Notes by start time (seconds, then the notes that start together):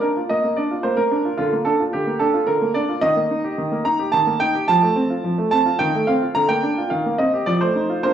0.01 D4 A#4
0.17 F4
0.29 A#3 D#5
0.44 A#3
0.57 D4 D5
0.71 F4
0.83 A#3 C5
0.97 A#3 A#4
1.12 D4
1.25 F4
1.38 D3 F4
1.53 A#3
1.65 D4 A4
1.80 F4
1.93 D3 G4
2.07 A#3
2.20 D4 A4
2.34 F4
2.47 D3 A#4
2.62 A#3
2.74 D4 D5
2.89 F4
3.02 D#3 D#5
3.17 A#3
3.31 D#4
3.44 G4
3.58 D#3
3.72 A#3
3.85 D#4 A#5
3.99 G4
4.12 D#3 A5
4.27 A#3
4.40 D#4 G5
4.55 G4
4.68 F3 A5
4.82 A3
4.96 C4
5.10 F4
5.24 F3
5.38 A3
5.51 C4 A5
5.66 F4
5.79 D#3 G5
5.94 A3
6.07 C4 F5
6.22 F4
6.34 D3 A#5
6.48 A#3 G5
6.63 D4
6.77 F4
6.90 D#3 F5
7.06 A#3
7.18 C4 D#5
7.34 G4
7.46 F3 D5
7.61 A3 C5
7.76 D#4
7.90 F4
8.04 A#3 D4 F4 C5